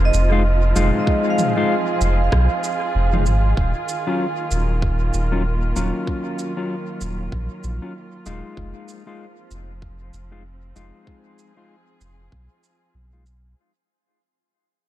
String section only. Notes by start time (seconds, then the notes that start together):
Already playing: F3 A#3 C4 F4
0.83 G#4
3.57 D#3
4.07 A#3
5.83 F#3
8.57 F3
9.33 C4
10.84 G#4